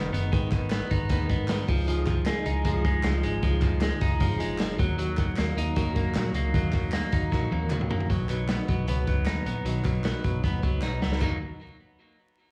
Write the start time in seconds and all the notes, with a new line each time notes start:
Already playing: F1 D#3 G#3 B3 D#4 B4
0.12 F#1 G#3 B3 D#4 B4, closed hi-hat
0.32 G#1 G#2 D#3 G#3 B3 D#4 B4, kick, closed hi-hat
0.51 D#3 G#3 B3 D#4 B4, kick, clap, closed hi-hat
0.70 G#3 B3 D#4 B4, snare, clap, closed hi-hat
0.90 G#1 G#3 B3 D#4 B4, kick, closed hi-hat
1.09 D#2 G#2 D#3 G#3 B3 D#4 B4, kick, closed hi-hat
1.29 G#2 G#3 B3 D#4 B4, kick, closed hi-hat
1.48 D#3 G#3 B3 D#4 B4, snare, clap, closed hi-hat
1.68 C#2 F3 D#4 F4 G#4, kick, open hi-hat
1.87 C#3 F3 G#3 D#4 F4 G#4, closed hi-hat
2.06 F3 D#4 F4 G#4, kick, clap, closed hi-hat
2.25 G#3 D#4 F4, snare, clap, closed hi-hat
2.29 G#4
2.46 C#2 D#4 F4 G#4, closed hi-hat
2.65 C#3 F3 G#3 D#4 F4 G#4, kick, closed hi-hat
2.85 G#3 D#4 G#4, kick, closed hi-hat
3.03 C#2 F3 G#3 D#4 F4 G#4, snare, clap, closed hi-hat
3.23 G#1 G#3 D#4 F4 G#4, closed hi-hat
3.43 C#2 C#3 F3 G#3 D#4 F4 G#4, kick, closed hi-hat
3.61 F3 D#4 F4 G#4, kick, clap, closed hi-hat
3.81 G#3 D#4 F4 G#4, snare, clap, closed hi-hat
4.01 C#2 D#4 F4 G#4, kick, closed hi-hat
4.20 G#1 C#3 F3 G#3 D#4 F4 G#4, kick, closed hi-hat
4.39 F1 G#3 D#4 F4 G#4, closed hi-hat
4.58 F3 G#3 D#4 F4, snare, clap, closed hi-hat
4.62 G#4
4.78 D#2 F#3 D#4 F#4 A#4, kick, closed hi-hat
4.98 D#3 F#3 D#4 F#4 A#4, closed hi-hat
5.17 F#3 D#4 F#4 A#4, kick, clap, closed hi-hat
5.36 D#2 F#3 A#3 D#4 F#4 A#4, snare, clap, closed hi-hat
5.56 D#2 D#4 F#4 A#4, closed hi-hat
5.76 D#3 F#3 D#4 F#4 A#4, kick, closed hi-hat
5.95 A#3 D#4 F#4 A#4, kick, closed hi-hat
6.14 A#1 F#3 D#4 F#4 A#4, snare, clap, closed hi-hat
6.34 C#2 A#3 D#4 F#4 A#4, closed hi-hat
6.54 D#2 D#3 F#3 D#4 F#4 A#4, kick, closed hi-hat
6.72 F#3 F#4 A#4, kick, clap, closed hi-hat
6.77 D#4
6.91 F#3 A#3 D#4 F#4 A#4, snare, clap, closed hi-hat
7.12 D#2 D#4 F#4 A#4, kick, closed hi-hat
7.32 A#1 D#3 F#3 D#4 F#4 A#4, kick, snare
7.51 D#2 A#3 D#4 F#4 A#4, high tom
7.70 F#3 D#4 F#4 A#4, clap, mid tom
7.81 mid tom
7.89 A#3 D#4 F#4 A#4, floor tom
8.01 floor tom
8.09 B1 B2 D#3 F#3 B3 D#4 B4, kick, closed hi-hat
8.29 B1 F#3 B3 D#4 B4, clap, closed hi-hat
8.47 F#3 B3 D#4 B4, snare, clap, closed hi-hat
8.67 B1 F#3 B3 D#4 B4, kick, closed hi-hat
8.87 C#2 B2 D#3 F#3 B3 D#4 B4, closed hi-hat
9.06 C#2 F#3 B3 D#4 B4, kick, closed hi-hat
9.25 D#2 F#3 B3 D#4 B4, snare, clap, closed hi-hat
9.46 A#1 F#3 B3 D#4 B4, closed hi-hat
9.65 B1 B2 D#3 F#3 B3 D#4 B4, closed hi-hat
9.84 B1 F#3 B3 D#4 B4, kick, clap, closed hi-hat
10.04 F#3 B3 D#4 B4, snare, clap, closed hi-hat
10.24 B1 F#3 B3 D#4 B4, kick, closed hi-hat
10.44 D#2 B2 D#3 F#3 B3 D#4 B4, kick, closed hi-hat
10.63 C#2 F#3 B3 D#4 B4, kick, closed hi-hat
10.81 B1 F#3 B3 D#4, snare, clap
10.85 B4
11.01 C#2 F#3 B3 D#4 B4, snare
11.12 snare
11.20 D#2 D#3 F#3 A#3 D#4 F#4 A#4, kick, clap, crash